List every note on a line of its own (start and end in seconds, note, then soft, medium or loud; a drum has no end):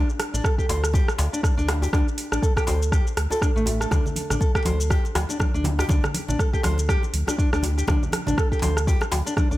0.10 shaker soft
0.20 cross-stick medium
0.20 open hi-hat medium
0.34 0.41 A1 medium
0.34 0.43 D4 medium
0.34 shaker medium
0.44 0.57 A4 medium
0.44 kick loud
0.44 cross-stick medium
0.44 shaker medium
0.58 0.68 G4 medium
0.58 kick medium
0.58 shaker soft
0.69 1.01 D2 medium
0.69 0.82 C5 medium
0.69 open hi-hat medium
0.69 djembe slap medium
0.69 djembe tone medium
0.84 cross-stick medium
0.84 shaker medium
0.93 1.07 G4 loud
0.93 kick loud
0.93 djembe tone medium
0.93 shaker medium
1.08 cross-stick medium
1.08 shaker soft
1.18 1.29 D2 medium
1.18 open hi-hat medium
1.18 djembe slap loud
1.18 djembe tone medium
1.33 1.43 D4 medium
1.33 shaker medium
1.43 kick loud
1.43 cross-stick medium
1.43 shaker medium
1.57 1.88 D2 medium
1.57 1.67 D4 loud
1.57 shaker soft
1.68 cross-stick medium
1.68 open hi-hat medium
1.68 djembe slap medium
1.82 1.88 G4 medium
1.82 djembe tone medium
1.82 shaker medium
1.93 2.03 D2 medium
1.93 2.06 D4 loud
1.93 kick loud
1.93 cross-stick medium
1.93 djembe slap medium
1.93 shaker medium
2.08 shaker soft
2.18 open hi-hat medium
2.32 2.40 A1 medium
2.32 2.41 D4 medium
2.32 cross-stick medium
2.32 shaker medium
2.42 2.55 A4 medium
2.42 kick loud
2.42 shaker medium
2.57 2.66 G4 loud
2.57 kick medium
2.57 cross-stick medium
2.57 shaker soft
2.67 3.00 D2 medium
2.67 2.80 C5 medium
2.67 open hi-hat medium
2.67 djembe slap medium
2.67 djembe tone loud
2.82 shaker medium
2.92 3.05 G4 loud
2.92 kick loud
2.92 cross-stick medium
2.92 shaker medium
3.07 shaker soft
3.17 3.27 D2 medium
3.17 cross-stick medium
3.17 open hi-hat medium
3.31 3.41 A4 medium
3.31 djembe tone medium
3.31 shaker medium
3.42 3.49 D4 medium
3.42 kick loud
3.42 cross-stick medium
3.42 shaker medium
3.56 3.86 A1 medium
3.56 3.65 A3 loud
3.56 shaker soft
3.66 open hi-hat medium
3.66 djembe tone medium
3.80 3.90 A4 medium
3.80 cross-stick medium
3.80 shaker medium
3.91 4.01 D2 loud
3.91 4.04 D4 loud
3.91 kick loud
3.91 cross-stick medium
3.91 djembe slap medium
3.91 muted conga soft
3.91 high conga loud
3.91 low conga medium
3.91 shaker medium
4.06 low conga medium
4.06 shaker soft
4.16 open hi-hat medium
4.16 muted conga soft
4.16 high conga loud
4.30 4.38 A1 medium
4.30 4.40 D4 medium
4.30 cross-stick medium
4.30 low conga medium
4.30 shaker medium
4.41 4.54 A4 medium
4.41 kick loud
4.41 muted conga soft
4.41 shaker medium
4.55 4.65 G4 medium
4.55 kick medium
4.55 cross-stick medium
4.55 shaker soft
4.65 4.98 D2 medium
4.65 4.78 C5 medium
4.65 open hi-hat medium
4.65 djembe slap medium
4.65 high conga loud
4.65 djembe tone medium
4.80 muted conga soft
4.80 shaker medium
4.90 5.03 G4 loud
4.90 kick loud
4.90 cross-stick medium
4.90 djembe tone medium
4.90 shaker medium
5.05 muted conga soft
5.05 shaker soft
5.15 5.25 D2 medium
5.15 cross-stick medium
5.15 open hi-hat medium
5.15 djembe slap loud
5.15 djembe tone medium
5.15 high conga medium
5.29 5.39 D4 medium
5.29 muted conga soft
5.29 shaker medium
5.39 5.53 D4 medium
5.39 kick loud
5.39 cross-stick medium
5.39 high conga medium
5.39 shaker medium
5.54 5.85 D2 medium
5.54 5.64 D4 loud
5.54 shaker soft
5.64 open hi-hat medium
5.64 muted conga soft
5.64 djembe slap medium
5.64 high conga medium
5.64 low conga loud
5.79 5.85 G4 medium
5.79 cross-stick medium
5.79 djembe tone loud
5.79 shaker medium
5.89 6.00 D2 loud
5.89 6.02 D4 loud
5.89 kick loud
5.89 muted conga medium
5.89 djembe slap medium
5.89 high conga loud
5.89 low conga medium
5.89 shaker medium
6.04 cross-stick medium
6.04 low conga medium
6.04 shaker soft
6.14 open hi-hat medium
6.14 muted conga soft
6.14 high conga loud
6.29 6.36 A1 medium
6.29 6.38 D4 medium
6.29 low conga medium
6.29 shaker medium
6.39 6.52 A4 medium
6.39 kick loud
6.39 cross-stick medium
6.39 muted conga soft
6.39 shaker medium
6.53 6.63 G4 medium
6.53 kick medium
6.53 shaker soft
6.63 6.96 D2 medium
6.63 6.77 C5 medium
6.63 cross-stick medium
6.63 open hi-hat medium
6.63 djembe slap medium
6.63 djembe tone medium
6.63 high conga loud
6.78 muted conga soft
6.78 shaker medium
6.89 7.02 G4 loud
6.89 kick loud
6.89 cross-stick medium
6.89 shaker medium
7.03 muted conga soft
7.03 shaker soft
7.14 7.24 D2 medium
7.14 open hi-hat medium
7.14 high conga medium
7.27 7.37 D4 medium
7.27 cross-stick medium
7.27 muted conga soft
7.27 djembe tone medium
7.27 shaker medium
7.38 7.51 D4 medium
7.38 kick loud
7.38 shaker medium
7.53 7.83 D2 medium
7.53 7.62 D4 loud
7.53 cross-stick medium
7.53 shaker soft
7.63 open hi-hat medium
7.63 muted conga medium
7.63 high conga medium
7.63 djembe tone medium
7.78 7.83 G4 medium
7.78 shaker medium
7.87 7.98 D2 medium
7.87 8.01 D4 loud
7.87 kick loud
7.87 cross-stick medium
7.87 muted conga medium
7.87 djembe slap medium
7.87 high conga loud
7.87 low conga loud
7.87 shaker medium
8.03 low conga medium
8.03 shaker soft
8.12 cross-stick medium
8.12 open hi-hat medium
8.12 muted conga soft
8.12 high conga medium
8.27 8.35 A1 medium
8.27 8.37 D4 medium
8.27 low conga medium
8.27 shaker medium
8.38 8.50 A4 medium
8.38 kick loud
8.38 cross-stick medium
8.38 muted conga soft
8.38 shaker medium
8.52 8.61 G4 loud
8.52 kick medium
8.52 shaker soft
8.62 8.95 D2 medium
8.62 8.75 C5 medium
8.62 open hi-hat medium
8.62 djembe slap medium
8.62 high conga loud
8.62 djembe tone medium
8.77 cross-stick medium
8.77 muted conga soft
8.77 shaker medium
8.87 9.00 G4 loud
8.87 kick loud
8.87 djembe tone medium
8.87 shaker medium
9.01 cross-stick medium
9.01 muted conga medium
9.01 shaker soft
9.12 9.22 D2 medium
9.12 open hi-hat medium
9.12 djembe slap loud
9.12 high conga medium
9.12 djembe tone medium
9.26 9.36 D4 medium
9.26 muted conga soft
9.26 shaker medium
9.37 9.50 D4 medium
9.37 kick loud
9.37 cross-stick medium
9.37 high conga medium
9.37 shaker medium
9.51 9.57 D2 medium
9.51 9.57 D4 loud
9.51 shaker soft